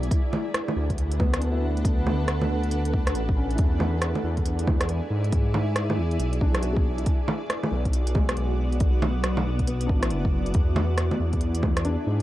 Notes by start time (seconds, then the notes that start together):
Already playing: F#3 G#3 B3
0.03 closed hi-hat
0.11 D4 A4 B4 F#5, kick, closed hi-hat
0.33 low bongo
0.54 cross-stick, closed hi-hat
0.68 low bongo
0.76 D2
0.90 kick, closed hi-hat
0.98 closed hi-hat
1.12 closed hi-hat
1.20 B3, kick, low bongo
1.34 cross-stick, closed hi-hat
1.39 D2 D4, closed hi-hat
1.52 E4
1.77 closed hi-hat
1.85 kick, closed hi-hat
2.07 low bongo
2.28 cross-stick, closed hi-hat
2.41 low bongo
2.50 D2
2.63 closed hi-hat
2.71 closed hi-hat
2.85 closed hi-hat
2.93 kick
3.07 cross-stick, closed hi-hat
3.15 A1, closed hi-hat
3.29 kick
3.37 C#4
3.51 closed hi-hat
3.55 E2 E4 G#4 D5, kick, closed hi-hat
3.80 low bongo
4.02 cross-stick, closed hi-hat
4.15 low bongo
4.23 E2
4.37 kick, closed hi-hat
4.46 closed hi-hat
4.59 closed hi-hat
4.67 kick, low bongo
4.81 cross-stick, closed hi-hat
4.89 closed hi-hat
5.10 G#2
5.24 closed hi-hat
5.32 kick, closed hi-hat
5.54 low bongo
5.76 cross-stick, closed hi-hat
5.90 low bongo
5.98 E2
6.11 closed hi-hat
6.19 B1, closed hi-hat
6.33 closed hi-hat
6.41 B1 D4, kick
6.55 cross-stick, closed hi-hat
6.60 F#4, closed hi-hat
6.73 G#4, kick
6.98 closed hi-hat
7.06 B3 F#4, kick, closed hi-hat
7.28 low bongo
7.50 cross-stick, closed hi-hat
7.63 low bongo
7.72 B1
7.85 kick, closed hi-hat
7.93 closed hi-hat
8.07 closed hi-hat
8.15 G#3, kick, low bongo
8.29 cross-stick, closed hi-hat
8.37 B1, closed hi-hat
8.72 closed hi-hat
8.80 kick, closed hi-hat
9.02 low bongo
9.24 cross-stick, closed hi-hat
9.37 low bongo
9.46 B1
9.59 kick, closed hi-hat
9.67 B3, closed hi-hat
9.81 closed hi-hat
9.87 A1 D4, kick
10.00 E4, cross-stick, closed hi-hat
10.10 F#1, closed hi-hat
10.25 kick
10.46 closed hi-hat
10.54 E2 E4 G#4, kick, closed hi-hat
10.76 low bongo
10.98 cross-stick, closed hi-hat
11.11 low bongo
11.20 E2
11.33 kick, closed hi-hat
11.41 closed hi-hat
11.55 closed hi-hat
11.63 kick, low bongo
11.77 cross-stick, closed hi-hat
11.85 D4, closed hi-hat
12.07 G#2